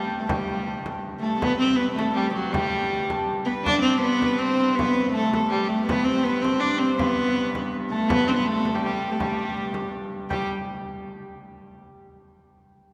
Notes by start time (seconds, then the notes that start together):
Already playing: G2 G3 G5 A5 B5
0.10 frame drum
0.20 A3 A5
0.29 G3 G5, frame drum
0.50 frame drum
0.86 frame drum
1.19 A3 A5
1.24 A4
1.40 G2 B3 B4 B5, frame drum
1.58 C4 C5, frame drum
1.76 B3 B4 B5, frame drum
1.95 A3 A4 A5, frame drum
2.14 G3 G4 G5, frame drum
2.34 F#3 F#4, frame drum
2.52 G3 G4 G5, frame drum
2.73 frame drum
2.93 frame drum
3.10 A5, frame drum
3.30 frame drum
3.45 B3 B4 B5, frame drum
3.64 D4 D5 D6, frame drum
3.82 C4 C6
3.86 C5, frame drum
4.00 B3 B4 B5, frame drum
4.22 B4, frame drum
4.38 C4 C5 C6, frame drum
4.59 C6, frame drum
4.75 B3 B4 B5, frame drum
5.12 A3 A4 A5
5.33 A4 A5, frame drum
5.50 G3 G5, frame drum
5.55 G4
5.69 A3, frame drum
5.86 G2 B3 B4 B5, frame drum
6.05 C4 C5 C6, frame drum
6.23 B3 B4 B5, frame drum
6.42 C4 C5 C6, frame drum
6.60 D4 D5 D6, frame drum
6.79 C4 C5 C6, frame drum
6.96 B3 B4 B5, frame drum
7.18 frame drum
7.37 frame drum
7.55 B5, frame drum
7.75 frame drum
7.89 A3 A4 A5, frame drum
8.09 B3 B4 B5, frame drum
8.27 C4 D4 C5 C6, frame drum
8.36 B3 B4 B5
8.46 A3 A4 A5, frame drum
8.65 frame drum
8.74 G3 G4 G5
8.81 G3 G4, frame drum
8.86 G5
9.02 frame drum
9.11 A3 A4 A5
9.20 G3 G4 G5, frame drum
9.39 frame drum
9.57 frame drum
9.74 frame drum
10.29 G3 G4 G5, frame drum